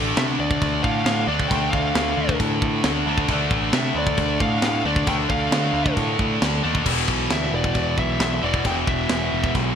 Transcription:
Already playing: picked electric bass A1, distorted electric guitar D3 A3 D4
0.17 picked electric bass C3, lead electric guitar E5, snare, china
0.39 picked electric bass D2, lead electric guitar D5
0.51 kick
0.61 picked electric bass D2, kick, china
0.83 picked electric bass A2, lead electric guitar F5, kick
1.05 picked electric bass A2, lead electric guitar F5, snare, china
1.27 picked electric bass D2, distorted electric guitar D3 A3 D4, lead electric guitar D5
1.40 kick
1.48 picked electric bass D2, distorted electric guitar D3 A3, lead electric guitar G5, kick, china
1.53 distorted electric guitar D4
1.70 picked electric bass D2, lead electric guitar F5, kick
1.95 picked electric bass D2, snare, china
2.17 picked electric bass D2
2.29 kick
2.40 picked electric bass A2, kick, china
2.62 picked electric bass A2, kick
2.84 picked electric bass D2, snare, china
3.06 picked electric bass D2, distorted electric guitar D3 A3 D4
3.18 kick
3.28 picked electric bass D2, distorted electric guitar D3 A3 D4, kick, china
3.51 picked electric bass A1, kick
3.73 picked electric bass C3, lead electric guitar E5, snare, china
3.95 picked electric bass D2, lead electric guitar D5
4.07 kick
4.17 picked electric bass D2, kick, china
4.40 picked electric bass A2, lead electric guitar F5, kick
4.62 picked electric bass A2, lead electric guitar F5, snare, china
4.85 picked electric bass D2, distorted electric guitar D3 A3 D4, lead electric guitar D5
4.96 kick
5.07 picked electric bass D2, distorted electric guitar D3 A3 D4, lead electric guitar G5, kick, china
5.30 picked electric bass D2, lead electric guitar F5, kick
5.51 picked electric bass D2, snare, china
5.73 picked electric bass D2
5.86 kick
5.97 picked electric bass A2, kick, china
6.19 picked electric bass A2, kick
6.42 picked electric bass D2, snare, china
6.63 picked electric bass D#2, distorted electric guitar D3 A3 D4
6.75 kick
6.85 picked electric bass E1, distorted electric guitar E2 B2 E3, kick, china, crash
7.08 picked electric bass B1, kick
7.30 picked electric bass D2, lead electric guitar E5, snare, china
7.52 picked electric bass E1, lead electric guitar D5
7.64 kick
7.75 picked electric bass E1, kick, china
7.98 picked electric bass B1, lead electric guitar E5, kick
8.20 picked electric bass B1, lead electric guitar E5, snare, china
8.42 picked electric bass E1, distorted electric guitar E2 B2 E3, lead electric guitar D5
8.54 kick
8.65 picked electric bass E1, distorted electric guitar E2 B2 E3, lead electric guitar G5, kick, china
8.87 picked electric bass E1, lead electric guitar E5, kick
9.09 picked electric bass E1, snare, china
9.32 picked electric bass E1
9.44 kick
9.55 picked electric bass B1, kick, china

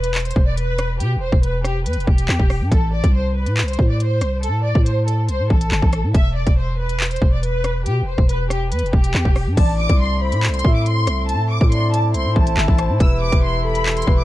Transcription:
Already playing: 808-style bass E1, violin section B4
0.04 closed hi-hat
0.15 clap, closed hi-hat
0.20 closed hi-hat
0.25 violin section C5, closed hi-hat
0.31 closed hi-hat
0.36 808-style bass E1, kick
0.46 violin section D5
0.57 violin section B4, closed hi-hat
0.78 cross-stick, closed hi-hat
1.00 808-style bass B2, violin section G4, closed hi-hat
1.16 808-style bass E1
1.22 violin section C5
1.32 808-style bass E1, kick
1.43 violin section B4, closed hi-hat
1.64 violin section G4, cross-stick, closed hi-hat
1.86 808-style bass E2, violin section B4, closed hi-hat
1.93 808-style bass E1, closed hi-hat
2.00 closed hi-hat
2.07 808-style bass E1, violin section G4, kick
2.18 closed hi-hat
2.29 808-style bass E2, clap
2.39 808-style bass E1, kick
2.50 cross-stick, open hi-hat
2.61 808-style bass G2
2.71 808-style bass A1, violin section A4, kick, closed hi-hat
2.93 violin section D5
3.04 808-style bass C2, kick, closed hi-hat
3.14 violin section C5
3.36 violin section B4
3.46 808-style bass A2, closed hi-hat
3.57 clap, closed hi-hat
3.63 808-style bass C2, closed hi-hat
3.68 violin section C5, closed hi-hat
3.73 closed hi-hat
3.79 808-style bass A2, kick
3.89 violin section D5
4.00 violin section C5, closed hi-hat
4.21 808-style bass C2, cross-stick, closed hi-hat
4.43 violin section A4, closed hi-hat
4.48 808-style bass A2
4.65 violin section D5
4.75 808-style bass A2, kick
4.85 violin section C5, closed hi-hat
5.07 violin section A4, closed hi-hat
5.29 808-style bass C2, violin section C5, closed hi-hat
5.39 808-style bass A2
5.50 808-style bass A1, violin section A4, kick
5.61 closed hi-hat
5.71 808-style bass G1, clap
5.82 808-style bass A1, kick
5.93 cross-stick, closed hi-hat
6.04 808-style bass A2
6.14 808-style bass E1, violin section E5, kick, closed hi-hat
6.36 violin section D5
6.47 808-style bass E1, kick, closed hi-hat
6.58 violin section C5
6.79 violin section B4
6.89 closed hi-hat
7.00 clap, closed hi-hat
7.06 closed hi-hat
7.10 violin section C5, closed hi-hat
7.16 closed hi-hat
7.22 808-style bass E1, kick
7.32 violin section D5
7.43 violin section B4, closed hi-hat
7.64 cross-stick, closed hi-hat
7.86 808-style bass B2, violin section G4, closed hi-hat
8.02 808-style bass E1
8.07 violin section C5
8.18 808-style bass E1, kick
8.29 violin section B4, closed hi-hat
8.50 violin section G4, cross-stick, closed hi-hat
8.71 808-style bass E2, violin section B4, closed hi-hat
8.79 808-style bass E1, closed hi-hat
8.86 closed hi-hat
8.92 808-style bass E1, violin section G4, kick
9.04 closed hi-hat
9.14 808-style bass E2, clap
9.25 808-style bass E1, kick
9.36 cross-stick, open hi-hat
9.47 808-style bass G2
9.57 808-style bass A1, brass ensemble A3 C4 E4, soft synth lead D5, violin section A5, kick, closed hi-hat, crash
9.79 violin section D6
9.89 808-style bass C2, kick, closed hi-hat
10.00 violin section C6
10.21 soft synth lead C5, violin section B5
10.32 808-style bass A2, closed hi-hat
10.43 clap, closed hi-hat
10.48 808-style bass C2, closed hi-hat
10.54 violin section C6, closed hi-hat
10.59 closed hi-hat
10.64 808-style bass A2, soft synth lead E5, kick
10.75 violin section D6
10.86 violin section C6, closed hi-hat
11.07 808-style bass C2, cross-stick, closed hi-hat
11.28 violin section A5, closed hi-hat
11.34 808-style bass A2
11.50 violin section D6
11.61 808-style bass A2, kick
11.71 soft synth lead D5, violin section C6, closed hi-hat
11.92 violin section A5, closed hi-hat
12.14 808-style bass C2, soft synth lead C5, violin section C6, closed hi-hat
12.25 808-style bass A2
12.36 808-style bass A1, violin section A5, kick
12.47 closed hi-hat
12.57 808-style bass G1, soft synth lead E5, clap
12.68 808-style bass A1, kick
12.78 soft synth lead C5, cross-stick, closed hi-hat
12.89 808-style bass A2
13.00 808-style bass E1, brass ensemble E3 G4 B4, soft synth lead B4, violin section E6, kick, closed hi-hat
13.21 violin section D6
13.32 808-style bass E1, kick, closed hi-hat
13.44 violin section C6
13.64 soft synth lead A4, violin section B5
13.75 closed hi-hat
13.86 clap, closed hi-hat
13.91 closed hi-hat
13.96 violin section C6, closed hi-hat
14.02 closed hi-hat
14.07 808-style bass E1, soft synth lead B4, kick
14.18 violin section D6

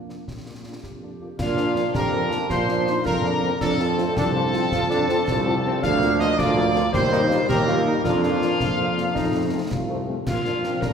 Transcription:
Already playing: tuba F2, euphonium A#3, woodwind section D4
0.09 french horn section A#3 D4 F4, trumpet section D5, snare
0.28 tuba A#2, woodwind section F4, concert bass drum, snare
0.46 french horn section A#3 D4 F4, trumpet section D5
0.65 french horn section A#3 D4 F4, trumpet section D5
0.83 tuba F2, woodwind section G4, concert bass drum, snare
1.02 french horn section A#3 D4 F4, trumpet section D5
1.20 french horn section A#3 D4 F4, trumpet section D5
1.38 tuba A#2, trombone section F3 D4, euphonium D4, trumpet section F4, woodwind section F4, piccolo F5, concert bass drum, snare, crash
1.57 french horn section F3 A#3 D4, snare
1.76 french horn section F3 A#3 D4, snare
1.94 tuba F2, euphonium G4, trumpet section A#4, woodwind section A#4, piccolo A#5, concert bass drum, snare
2.13 french horn section F3 A#3 D4
2.31 french horn section F3 A#3 D4, snare
2.49 tuba A#2, euphonium F4, trumpet section C5, woodwind section C5, piccolo C6, concert bass drum, snare
2.68 french horn section F3 A#3 D4, euphonium D4, snare
2.86 french horn section F3 A#3 D4, euphonium D#4, snare
3.05 tuba F2, euphonium F4, woodwind section A#4, trumpet section A#4, piccolo A#5, concert bass drum, snare
3.23 french horn section F3 A#3 D4, euphonium D4
3.42 french horn section F3 A#3 D4, euphonium C4
3.60 tuba F2, trombone section F3 C4, euphonium D4, trumpet section A4, woodwind section A4, piccolo A5, concert bass drum, snare, crash
3.79 french horn section F3 C4 F4, euphonium C4, snare
3.97 french horn section F3 C4 F4, euphonium A3, snare
4.16 tuba C2, euphonium D4, woodwind section A4, trumpet section A4, piccolo A5, concert bass drum, snare
4.35 french horn section F3 C4 F4, euphonium C4
4.53 french horn section F3 C4 F4, euphonium C4, snare
4.72 tuba F2, euphonium F4, concert bass drum, snare
4.90 french horn section F3 C4 F4, euphonium D4, snare
5.09 french horn section F3 C4 F4, euphonium C4, snare
5.27 tuba C2, euphonium D4, concert bass drum, snare
5.46 french horn section F3 C4 F4, euphonium C4
5.64 french horn section F3 C4 F4, euphonium C4
5.83 tuba D2, trombone section F3 A#3, euphonium D4, woodwind section F5, trumpet section F5, piccolo F6, concert bass drum, snare, crash
6.01 french horn section F3 A#3 F4, snare
6.19 french horn section F3 A#3 F4, trumpet section D#5, woodwind section D#5, piccolo D#6, snare
6.38 tuba D2, euphonium F4, woodwind section D5, trumpet section D5, piccolo D6, concert bass drum, snare
6.56 french horn section F3 A#3 F4
6.75 french horn section F3 A#3 F4, snare
6.93 tuba D#2, trombone section G3, euphonium G4, woodwind section C5, trumpet section C5, piccolo C6, concert bass drum, snare
7.12 french horn section G3 A#3 D#4, euphonium D#4, snare
7.30 french horn section G3 A#3 D#4, euphonium F4, snare
7.48 tuba D#2, euphonium G4, trumpet section A#4, woodwind section A#4, piccolo A#5, concert bass drum, snare
7.67 french horn section G3 A#3 D#4, euphonium F4
7.85 french horn section G3 A#3 D#4, euphonium D#4
8.04 tuba F2, trombone section F3 A#3, euphonium D4, trumpet section F4, woodwind section F4, piccolo F5, concert bass drum, snare, crash
8.23 french horn section F3 A#3 D4, snare
8.42 french horn section F3 A#3 D4, snare
8.60 tuba F2, euphonium A#3, concert bass drum, snare
8.78 french horn section F3 A#3 D4
8.97 french horn section F3 A#3 D4, snare
9.15 tuba F2, trombone section A3, euphonium D#4, concert bass drum, snare
9.34 french horn section F3 A3 C4
9.53 french horn section F3 A3 C4
9.71 tuba C2, euphonium F4, concert bass drum, snare
9.89 french horn section F3 A3 C4
10.08 french horn section F3 A3 C4
10.26 tuba A#2, trombone section F3 D4, euphonium A#3, trumpet section F4, woodwind section F4, piccolo F5, concert bass drum, snare, crash
10.45 french horn section F3 A#3 D4, euphonium D4, snare
10.63 french horn section F3 A#3 D4, euphonium C4, snare
10.81 tuba F2, euphonium D4, woodwind section A#4, trumpet section A#4, piccolo A#5, concert bass drum, snare

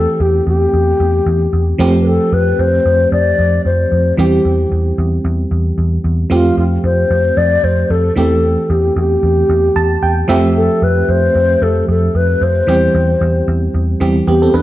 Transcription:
Already playing: fm electric piano E3 A3 C4 G4, alto flute A4
0.20 picked electric bass E2, alto flute G4
0.47 picked electric bass E2, alto flute G4
0.73 picked electric bass E2
1.00 picked electric bass E2
1.26 picked electric bass E2
1.53 picked electric bass E2
1.78 picked electric bass F2, fm electric piano F3 A3 C4 G4
2.01 alto flute B4
2.07 alto flute A4
2.32 picked electric bass F2, alto flute B4
2.59 picked electric bass F2, alto flute C5
2.85 picked electric bass F2
3.12 picked electric bass F2, alto flute D5
3.39 picked electric bass F2
3.65 picked electric bass F2, alto flute C5
3.92 picked electric bass F2
4.17 picked electric bass E2, fm electric piano E3 G3 C4 G4, alto flute G4
4.45 picked electric bass E2
4.72 picked electric bass E2
4.98 picked electric bass E2
5.25 picked electric bass E2
5.51 picked electric bass E2
5.78 picked electric bass E2
6.04 picked electric bass E2
6.30 picked electric bass F2, fm electric piano F3 A3 C4 G4, alto flute F4
6.57 picked electric bass F2, alto flute F4
6.84 picked electric bass F2, alto flute C5
7.10 picked electric bass F2
7.37 picked electric bass F2, alto flute D5
7.64 picked electric bass F2, alto flute C5
7.90 picked electric bass F2, alto flute A4
8.16 picked electric bass E2, fm electric piano E3 A3 C4 G4, alto flute A4
8.70 picked electric bass E2, alto flute G4
8.96 picked electric bass E2, alto flute G4
9.23 picked electric bass E2
9.49 picked electric bass E2
9.76 picked electric bass E2, fm electric piano A5
10.03 picked electric bass E2, fm electric piano G5
10.28 picked electric bass F2, fm electric piano F3 A3 C4 G4 E5
10.57 alto flute A4
10.82 picked electric bass F2, alto flute B4
11.09 picked electric bass F2, alto flute C5
11.35 picked electric bass F2
11.62 picked electric bass F2, alto flute A4
11.88 picked electric bass F2, alto flute A4
12.15 picked electric bass F2, alto flute B4
12.41 picked electric bass F2, alto flute C5
12.67 picked electric bass E2, fm electric piano E3 G3 C4 G4
12.95 picked electric bass E2
13.21 picked electric bass E2
13.48 picked electric bass E2
13.74 picked electric bass E2
14.00 picked electric bass E2, fm electric piano E3 G3 C4 G4
14.27 picked electric bass E2, fm electric piano B3 G4, alto flute G4
14.42 fm electric piano C4 A4
14.54 picked electric bass E2, fm electric piano D4 B4, alto flute B4

